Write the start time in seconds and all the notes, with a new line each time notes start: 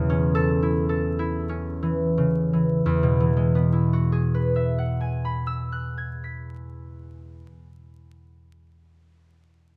Already playing: E2 C#3 E3 G#4
0.10 C#4
0.35 A4
0.62 E4
0.89 A4
1.19 E4
1.49 C#4
1.83 E3
2.18 C#3
2.53 E3
2.86 E2 E4
3.03 B2
3.20 E3
3.37 G#3
3.55 B3
3.73 E4
3.93 F#4
4.12 G#4
4.34 B4
4.56 E5
4.78 F#5
5.01 G#5
5.25 B5
5.47 E6
5.72 F#6
5.97 G#6
6.24 B6